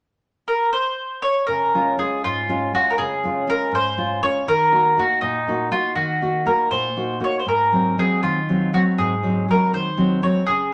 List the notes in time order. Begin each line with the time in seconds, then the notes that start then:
0.48 A#4
0.73 C5
1.22 C#5
1.47 C#3 A#4
1.74 G#3 C#4 F4
1.98 G#3 C#4 F4 G#4
2.24 G#2 F4
2.49 G#3 C#4 F4
2.73 G#3 C#4 F4 F#4
2.90 A#4
2.98 C#3 G#4
3.24 G#3 C#4 F4
3.47 G#3 C#4 F4 A#4
3.71 G#2 C5
3.97 G#3 C#4 F4
4.23 G#3 C#4 F4 C#5
4.48 D#3 A#4
4.72 A#3 D#4 F#4
4.97 A#3 D#4 F#4
5.21 A#2 D#4
5.47 A#3 D#4 F#4
5.71 A#3 D#4 F4 F#4
5.95 D#3 F#4
6.21 A#3 D#4 F#4
6.46 A#3 D#4 F#4 A#4
6.71 A#2 C5
6.97 A#3 D#4 F#4
7.20 A#3 D#4 F#4 C#5
7.39 C5
7.46 G#2 A#4
7.72 F#3 G#3 C4
7.98 F#3 G#3 C4 G#4
8.23 D#3 F4
8.49 F#3 G#3 C4
8.73 F#3 G#3 C4 F#4
8.98 G#2 G#4
9.23 F#3 G#3 C4
9.48 F#3 G#3 C4 A#4
9.73 D#3 C5
9.97 F#3 G#3 C4
10.22 F#3 G#3 C4 C#5
10.46 C#3 G#4